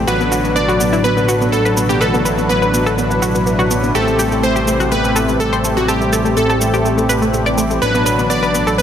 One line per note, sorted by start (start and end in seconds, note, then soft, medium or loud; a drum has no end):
0.07 3.92 A1 medium
0.07 3.91 B2 medium
0.07 3.91 D3 medium
0.07 3.92 F#3 medium
0.07 3.91 F#3 medium
0.07 3.92 D4 medium
0.07 1.99 D4 medium
0.07 0.15 F#4 medium
0.07 3.91 F#4 medium
0.07 0.57 B4 loud
0.07 3.92 B4 medium
0.07 shaker soft
0.20 0.27 B3 medium
0.20 shaker soft
0.32 0.39 F#4 medium
0.32 shaker medium
0.44 0.51 B3 medium
0.44 shaker soft
0.56 0.63 B3 medium
0.56 1.06 D5 loud
0.56 shaker soft
0.69 0.75 F#4 medium
0.69 shaker soft
0.80 0.88 B3 medium
0.80 shaker medium
0.93 1.00 E4 medium
0.93 shaker soft
1.04 1.12 B3 medium
1.04 1.52 B4 loud
1.04 shaker soft
1.17 1.24 B3 medium
1.17 shaker soft
1.28 1.36 F#4 medium
1.28 shaker medium
1.41 1.48 B3 medium
1.41 shaker soft
1.52 1.60 B3 medium
1.52 1.91 A4 loud
1.52 shaker soft
1.65 1.72 B4 medium
1.65 shaker soft
1.77 1.84 B3 medium
1.77 shaker medium
1.89 1.96 B3 medium
1.89 2.02 G4 medium
1.89 shaker soft
2.01 7.78 E4 medium
2.01 2.51 A4 loud
2.01 2.09 B4 medium
2.01 shaker soft
2.14 2.21 B3 medium
2.14 shaker soft
2.25 2.33 B4 medium
2.25 shaker medium
2.38 2.45 B3 medium
2.38 shaker soft
2.49 2.57 B3 medium
2.49 3.46 B4 medium
2.49 shaker soft
2.62 2.69 B4 medium
2.62 shaker soft
2.74 2.81 B3 medium
2.74 shaker medium
2.86 2.93 A4 medium
2.86 shaker soft
2.98 3.05 B3 medium
2.98 shaker soft
3.11 3.17 B3 medium
3.11 shaker soft
3.22 3.30 F#4 medium
3.22 shaker medium
3.35 3.42 B3 medium
3.35 shaker soft
3.46 3.54 B3 medium
3.46 shaker soft
3.59 3.66 F#4 medium
3.59 shaker soft
3.71 3.78 B3 medium
3.71 shaker medium
3.83 3.90 B3 medium
3.83 shaker soft
3.95 7.80 A1 medium
3.95 7.78 C3 medium
3.95 7.78 E3 medium
3.95 7.78 G3 medium
3.95 5.86 A3 medium
3.95 7.79 A3 medium
3.95 7.79 C4 medium
3.95 7.79 G4 medium
3.95 4.02 G4 medium
3.95 4.45 A4 loud
3.95 shaker soft
4.07 4.14 A3 medium
4.07 shaker soft
4.19 4.26 G4 medium
4.19 shaker medium
4.32 4.38 A3 medium
4.32 shaker soft
4.43 4.51 A3 medium
4.43 4.93 C5 loud
4.43 shaker soft
4.56 4.63 G4 medium
4.56 shaker soft
4.67 4.75 A3 medium
4.67 shaker medium
4.80 4.87 F#4 medium
4.80 shaker soft
4.92 4.99 A3 medium
4.92 5.41 B4 loud
4.92 shaker soft
5.04 5.11 A3 medium
5.04 shaker soft
5.16 5.23 A4 medium
5.16 shaker medium
5.29 5.35 A3 medium
5.29 shaker soft
5.40 5.47 A3 medium
5.40 5.78 A4 loud
5.40 shaker soft
5.53 5.59 C5 loud
5.53 shaker soft
5.64 5.72 A3 medium
5.64 shaker medium
5.77 5.84 A3 medium
5.77 5.90 F#4 medium
5.77 shaker soft
5.88 6.38 G4 loud
5.88 5.96 A4 loud
5.88 shaker soft
6.01 6.08 A3 medium
6.01 shaker soft
6.13 6.20 A4 medium
6.13 shaker medium
6.25 6.32 A3 medium
6.25 shaker soft
6.37 6.44 A3 medium
6.37 7.34 A4 medium
6.37 shaker soft
6.50 6.56 A4 medium
6.50 shaker soft
6.61 6.68 A3 medium
6.61 shaker medium
6.74 6.80 G4 medium
6.74 shaker soft
6.85 6.93 A3 medium
6.85 shaker soft
6.98 7.04 A3 medium
6.98 shaker soft
7.09 7.17 B4 loud
7.09 shaker medium
7.22 7.29 A3 medium
7.22 shaker soft
7.34 7.41 A3 medium
7.34 shaker soft
7.46 7.53 D5 medium
7.46 shaker soft
7.58 7.65 A3 medium
7.58 shaker medium
7.70 7.77 A3 medium
7.70 shaker soft
7.82 8.82 A1 medium
7.82 8.82 B2 medium
7.82 8.82 D3 medium
7.82 8.82 F#3 medium
7.82 8.82 D4 medium
7.82 8.82 F#4 medium
7.82 8.27 B4 loud
7.82 7.89 B4 medium
7.82 8.82 B4 medium
7.82 shaker soft
7.94 8.01 B3 medium
7.94 shaker soft
8.06 8.13 B4 medium
8.06 shaker medium
8.19 8.25 B3 medium
8.19 shaker soft
8.30 8.38 B3 medium
8.30 8.80 D5 loud
8.30 shaker soft
8.43 8.50 B4 medium
8.43 shaker soft
8.54 8.62 B3 medium
8.54 shaker medium
8.67 8.74 A4 medium
8.67 shaker soft
8.78 8.82 B3 medium
8.78 8.82 B4 loud
8.78 shaker soft